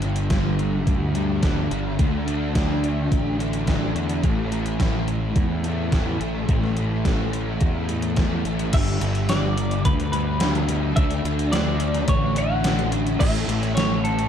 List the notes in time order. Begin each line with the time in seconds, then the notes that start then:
Already playing: G1 G2
0.01 D3 G3, closed hi-hat
0.16 closed hi-hat
0.30 G2 D3 G3, kick, snare, closed hi-hat
0.59 closed hi-hat
0.87 D2, kick, closed hi-hat
1.13 D3 G3, closed hi-hat
1.42 G2 D3 G3, kick, snare, closed hi-hat
1.70 G1 D3 G3, closed hi-hat
1.98 D2 D3 A3 D4, kick, closed hi-hat
2.25 A3 D4, closed hi-hat
2.54 D3 A3 D4, kick, snare, closed hi-hat
2.84 closed hi-hat
3.12 A1, kick, closed hi-hat
3.38 A3 D4, closed hi-hat
3.53 closed hi-hat
3.66 D3 A3 D4, kick, snare, closed hi-hat
3.94 E2 A3 D4, closed hi-hat
4.09 closed hi-hat
4.22 A1 A2 E3 A3, kick, closed hi-hat
4.50 E3 A3, closed hi-hat
4.66 closed hi-hat
4.78 A2 E3 A3, kick, snare, closed hi-hat
5.08 closed hi-hat
5.36 E2, kick, closed hi-hat
5.64 E3 A3, closed hi-hat
5.92 A2 E3 A3, kick, snare, closed hi-hat
6.20 A1 E3 A3, closed hi-hat
6.48 A1 A2 E3 A3, kick, closed hi-hat
6.64 snare
6.77 E3 A3, closed hi-hat
7.05 A2 E3 A3, kick, snare, closed hi-hat
7.33 closed hi-hat
7.61 E2, kick, closed hi-hat
7.88 E3 A3, closed hi-hat
8.02 closed hi-hat
8.16 A2 E3 A3, kick, snare, closed hi-hat
8.45 A1 E3 A3, closed hi-hat
8.59 closed hi-hat
8.73 G1 G2 D3 G3 E5, kick, closed hi-hat, crash
8.88 closed hi-hat
9.00 G1 D3 G3, closed hi-hat
9.15 closed hi-hat
9.29 G2 D3 G3 D5, snare, closed hi-hat
9.58 closed hi-hat
9.71 closed hi-hat
9.85 D2 B4, kick, closed hi-hat
10.00 closed hi-hat
10.12 D3 G3 B4, closed hi-hat
10.40 G2 D3 G3, snare, closed hi-hat
10.55 closed hi-hat
10.68 D3 G3, closed hi-hat
10.95 D2 D3 A3 D4 E5, kick, closed hi-hat
11.11 closed hi-hat
11.24 D2 A3 D4, closed hi-hat
11.39 closed hi-hat
11.52 D3 A3 D4 D5, snare, closed hi-hat
11.80 closed hi-hat
11.94 snare, closed hi-hat
12.08 A1 C#5, kick, closed hi-hat
12.36 A3 D4 F#5, closed hi-hat
12.63 D3 A3 D4, snare, closed hi-hat
12.79 closed hi-hat
12.92 A3 D4, closed hi-hat
13.07 closed hi-hat
13.20 A1 A2 E3 A3 E5, kick, crash
13.35 closed hi-hat
13.48 A1 E3 A3, closed hi-hat
13.63 closed hi-hat
13.75 A2 E3 A3 C#5, snare, closed hi-hat
14.04 A4, closed hi-hat
14.19 closed hi-hat